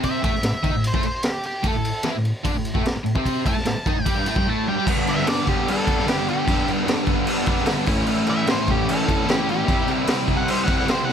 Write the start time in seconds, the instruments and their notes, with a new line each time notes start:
Already playing: overdriven electric guitar C3 C4
0.03 lead electric guitar E5, kick, ride
0.22 overdriven electric guitar A2 A3, kick, ride
0.34 muted overdriven electric guitar stroke, snare
0.43 overdriven electric guitar A2, snare, ride
0.55 muted overdriven electric guitar stroke
0.63 overdriven electric guitar D#3 D#4, kick, ride
0.73 overdriven electric guitar A2
0.84 lead electric guitar C5, ride
0.94 overdriven electric guitar A2 A3, kick
1.03 lead electric guitar C5, ride
1.23 lead electric guitar G4, snare, ride
1.43 lead electric guitar G4, ride
1.63 overdriven electric guitar A2 A3, kick, ride
1.68 lead electric guitar A4
1.74 overdriven electric guitar A2
1.85 ride
2.03 overdriven electric guitar E3 E4, snare, ride
2.14 overdriven electric guitar A2
2.25 ride
2.44 overdriven electric guitar D3 D4, kick, ride
2.54 overdriven electric guitar A2
2.65 ride
2.74 overdriven electric guitar A2 A3, kick
2.85 muted overdriven electric guitar stroke, snare, ride
2.96 muted overdriven electric guitar stroke
3.04 overdriven electric guitar A2, ride
3.15 overdriven electric guitar C3 C4, kick
3.26 kick, ride
3.46 overdriven electric guitar A2 A3, lead electric guitar A5, kick, ride
3.57 muted overdriven electric guitar stroke, snare
3.65 overdriven electric guitar A2, snare, ride
3.78 muted overdriven electric guitar stroke
3.86 overdriven electric guitar D#3 D#4, kick, ride
3.96 overdriven electric guitar A2
4.04 overdriven electric guitar G3 G4, lead electric guitar G5, kick, ride
4.15 overdriven electric guitar G2 G3
4.25 overdriven electric guitar A2 A3, lead electric guitar G5, ride
4.35 overdriven electric guitar G2 G3, kick
4.46 overdriven electric guitar A2 A3, lead electric guitar A5
4.67 overdriven electric guitar G2 G3, lead electric guitar G5
4.77 overdriven electric guitar G3 G4
4.86 overdriven electric guitar G2 D3 G3 B3, kick, crash
4.91 overdriven electric guitar D4
5.06 overdriven electric guitar B3 D4, lead electric guitar E5, crash
5.11 overdriven electric guitar G3
5.18 snare
5.25 overdriven electric guitar G2 D3 G3, lead electric guitar D5, snare, crash
5.29 overdriven electric guitar B3 D4
5.45 overdriven electric guitar B3 D4, lead electric guitar G4, kick, crash
5.49 overdriven electric guitar G3
5.68 lead electric guitar A4, crash
5.86 overdriven electric guitar B3 D4, kick, crash
5.91 overdriven electric guitar G3
5.99 snare
6.06 overdriven electric guitar D3 G3 B3, lead electric guitar G4, snare, crash
6.10 overdriven electric guitar D4
6.28 lead electric guitar G4, crash
6.46 overdriven electric guitar G2 D3 G3 B3, kick, crash
6.51 overdriven electric guitar D4
6.65 overdriven electric guitar B3 D4, crash
6.69 overdriven electric guitar G3
6.86 overdriven electric guitar G2 D3 G3 B3, snare, crash
6.91 overdriven electric guitar D4
7.05 overdriven electric guitar B3 D4, kick, crash
7.10 overdriven electric guitar G3
7.27 crash
7.45 overdriven electric guitar B3 D4, kick, crash
7.51 overdriven electric guitar G3
7.58 snare
7.66 overdriven electric guitar D3 G3 B3, snare, crash
7.71 overdriven electric guitar D4
7.86 overdriven electric guitar E3 A3 C#4 E4, kick, crash
7.91 overdriven electric guitar A2
8.06 overdriven electric guitar A2 E3 A3 C#4, crash
8.11 overdriven electric guitar E4
8.26 overdriven electric guitar C#4 E4, lead electric guitar E5, crash
8.31 overdriven electric guitar A3
8.46 overdriven electric guitar A2 E3 A3 C#4, snare, crash
8.51 overdriven electric guitar E4, lead electric guitar C5
8.67 overdriven electric guitar C#4 E4, kick, crash
8.71 overdriven electric guitar A3, lead electric guitar G4
8.89 lead electric guitar A4, crash
9.06 overdriven electric guitar C#4 E4, kick, crash
9.11 overdriven electric guitar A3
9.25 overdriven electric guitar E3 A3 C#4, crash
9.29 overdriven electric guitar E4, lead electric guitar G4, snare
9.49 lead electric guitar G4, crash
9.65 overdriven electric guitar C3 G3 C4, kick, crash
9.71 overdriven electric guitar E4
9.85 overdriven electric guitar C4 E4, crash
9.90 overdriven electric guitar G3
10.05 overdriven electric guitar C3 G3 C4, snare, crash
10.09 overdriven electric guitar E4
10.26 overdriven electric guitar G3 C4 E4, kick, crash
10.37 lead electric guitar F#5
10.48 lead electric guitar C5, crash
10.63 overdriven electric guitar E4, lead electric guitar F#5
10.68 overdriven electric guitar G3 C4, kick, crash
10.78 lead electric guitar F#5, snare
10.87 overdriven electric guitar C3 G3 C4 E4, lead electric guitar C5, snare, crash
11.05 lead electric guitar F#5
11.09 snare